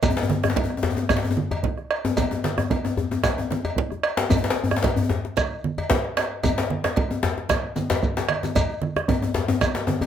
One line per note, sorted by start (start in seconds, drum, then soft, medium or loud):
0.03 bombo rim soft
0.03 bombo low loud
0.03 cowbell medium
0.03 djembe slap soft
0.03 low conga medium
0.03 djembe bass medium
0.03 shekere medium
0.10 djembe tone medium
0.17 djembe slap medium
0.17 djembe slap soft
0.23 djembe tone medium
0.29 bombo rim soft
0.29 djembe slap soft
0.29 djembe tone medium
0.29 high conga medium
0.43 bombo rim medium
0.43 djembe slap medium
0.43 djembe tone medium
0.50 djembe slap medium
0.56 bombo low medium
0.56 cowbell soft
0.56 djembe tone medium
0.56 low conga medium
0.64 djembe tone medium
0.70 bombo rim soft
0.77 djembe tone medium
0.83 djembe slap medium
0.83 djembe bass medium
0.90 djembe tone medium
0.97 djembe slap medium
0.97 djembe tone medium
1.09 bombo rim medium
1.09 bombo low medium
1.09 cowbell medium
1.09 djembe tone medium
1.09 high conga soft
1.09 djembe tone medium
1.09 low conga medium
1.09 shekere medium
1.17 djembe slap medium
1.24 high conga soft
1.24 djembe tone medium
1.31 djembe tone medium
1.37 high conga medium
1.51 cowbell soft
1.51 djembe slap medium
1.51 djembe bass medium
1.63 bombo low medium
1.63 high conga soft
1.63 low conga medium
1.78 bombo rim soft
1.78 djembe slap soft
1.78 high conga soft
1.91 bombo rim medium
1.91 cowbell soft
2.05 djembe slap medium
2.05 djembe tone loud
2.17 bombo rim soft
2.17 bombo low medium
2.17 cowbell medium
2.17 djembe slap soft
2.17 djembe tone medium
2.17 djembe bass medium
2.17 low conga medium
2.17 shekere medium
2.31 djembe slap soft
2.31 djembe tone medium
2.44 bombo rim soft
2.44 djembe slap medium
2.44 djembe slap soft
2.44 high conga medium
2.58 bombo rim medium
2.58 djembe slap medium
2.58 djembe tone medium
2.70 bombo rim soft
2.70 bombo low medium
2.70 cowbell soft
2.70 djembe slap soft
2.70 djembe tone medium
2.70 low conga medium
2.84 bombo rim soft
2.84 djembe tone medium
2.97 djembe tone medium
2.97 djembe bass medium
3.11 djembe slap medium
3.11 djembe tone medium
3.24 bombo rim medium
3.24 bombo low medium
3.24 cowbell medium
3.24 djembe slap medium
3.24 djembe tone medium
3.24 high conga soft
3.24 low conga medium
3.24 shekere medium
3.38 djembe tone medium
3.38 high conga soft
3.51 djembe tone medium
3.51 high conga medium
3.65 cowbell soft
3.65 djembe slap medium
3.65 djembe bass medium
3.76 bombo low medium
3.76 high conga soft
3.76 low conga medium
3.91 bombo rim soft
3.91 djembe slap soft
3.91 djembe tone medium
4.03 bombo rim medium
4.03 cowbell medium
4.17 djembe slap loud
4.17 djembe slap medium
4.30 bombo rim soft
4.30 bombo low loud
4.30 cowbell medium
4.30 djembe slap soft
4.30 djembe bass medium
4.30 low conga medium
4.30 shekere medium
4.37 djembe tone medium
4.44 djembe slap medium
4.44 djembe slap soft
4.50 djembe slap loud
4.57 bombo rim soft
4.57 djembe slap soft
4.64 djembe bass medium
4.71 bombo rim medium
4.71 djembe slap soft
4.71 djembe tone medium
4.76 djembe slap medium
4.82 bombo rim soft
4.82 bombo low loud
4.82 cowbell soft
4.82 djembe slap medium
4.84 djembe slap soft
4.84 low conga medium
4.96 bombo rim soft
4.96 djembe bass medium
5.03 djembe tone medium
5.09 djembe slap medium
5.09 djembe bass medium
5.25 djembe slap medium
5.37 bombo rim loud
5.37 bombo low loud
5.37 cowbell medium
5.37 high conga soft
5.37 djembe tone medium
5.37 low conga medium
5.37 shekere medium
5.64 high conga medium
5.78 cowbell medium
5.78 djembe slap medium
5.78 djembe bass soft
5.90 bombo low loud
5.90 djembe slap loud
5.90 high conga soft
5.90 low conga medium
6.04 bombo rim soft
6.04 djembe slap soft
6.04 high conga soft
6.17 bombo rim medium
6.17 cowbell soft
6.17 djembe slap medium
6.43 bombo low loud
6.43 cowbell medium
6.43 djembe tone medium
6.43 low conga medium
6.43 djembe bass medium
6.43 shekere medium
6.58 djembe slap loud
6.70 bombo rim soft
6.70 high conga medium
6.84 bombo rim medium
6.84 djembe slap medium
6.84 djembe tone medium
6.96 bombo low loud
6.96 cowbell soft
6.96 low conga medium
7.11 djembe tone medium
7.11 high conga soft
7.23 djembe slap medium
7.23 high conga soft
7.23 djembe bass medium
7.37 djembe slap medium
7.37 high conga soft
7.49 bombo rim loud
7.49 bombo low loud
7.49 cowbell soft
7.49 djembe slap medium
7.49 djembe slap soft
7.49 djembe tone medium
7.49 low conga medium
7.49 shekere medium
7.76 bombo rim soft
7.76 djembe tone medium
7.76 high conga medium
7.76 shekere soft
7.90 cowbell medium
7.90 djembe slap loud
7.90 djembe slap medium
7.90 low conga soft
7.90 djembe bass medium
7.90 shekere soft
8.03 bombo rim soft
8.03 bombo low loud
8.03 low conga medium
8.03 shekere soft
8.17 djembe slap medium
8.17 djembe tone medium
8.17 low conga medium
8.17 shekere soft
8.29 bombo rim medium
8.29 cowbell medium
8.29 djembe slap soft
8.29 high conga medium
8.43 djembe slap medium
8.43 djembe tone medium
8.43 high conga medium
8.43 shekere soft
8.55 bombo rim soft
8.55 bombo low loud
8.55 cowbell medium
8.55 djembe slap soft
8.55 low conga medium
8.55 djembe bass medium
8.55 shekere medium
8.71 djembe slap soft
8.82 bombo rim soft
8.82 djembe slap soft
8.82 high conga medium
8.96 bombo rim medium
8.96 djembe slap medium
8.96 djembe tone medium
9.08 bombo rim soft
9.08 bombo low loud
9.08 cowbell soft
9.08 djembe slap soft
9.08 djembe tone medium
9.08 low conga medium
9.22 bombo rim soft
9.22 djembe tone medium
9.34 djembe slap medium
9.34 djembe bass medium
9.48 djembe slap medium
9.48 djembe tone loud
9.61 bombo rim loud
9.61 bombo low loud
9.61 cowbell medium
9.61 djembe tone medium
9.61 high conga soft
9.61 low conga medium
9.61 shekere medium
9.75 djembe slap medium
9.75 high conga soft
9.87 djembe tone loud
9.87 high conga medium
10.01 cowbell soft
10.01 djembe tone medium
10.01 djembe bass medium